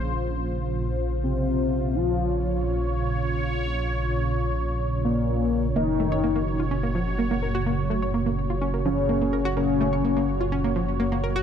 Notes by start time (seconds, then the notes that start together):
Already playing: A#1 A#2 C#3 F4 C5
1.24 C4
1.95 F4 C#5
5.05 A#3
5.76 F#1 A#3 D#4 F#4 C#5
6.00 A3
6.12 C#5
6.23 A#3
6.36 A#3
6.60 F4
6.71 C#4
6.83 A#3
6.95 F3
7.19 A#3
7.31 A#3
7.43 A#4
7.55 F#4
7.66 A#3
7.90 A3
8.02 C#5
8.14 A#3
8.26 A#3
8.50 F4
8.62 C#4
8.74 A#3
8.85 F3 C#4
9.09 A#3
9.21 A#3
9.33 A#4
9.45 F#4
9.57 A#3 C#4
9.81 A3
9.93 C#5
10.04 A#3
10.17 A#3
10.41 F4
10.52 C#4
10.64 A#3
10.76 F3
11.00 A#3
11.12 A#3
11.24 A#4
11.36 F#4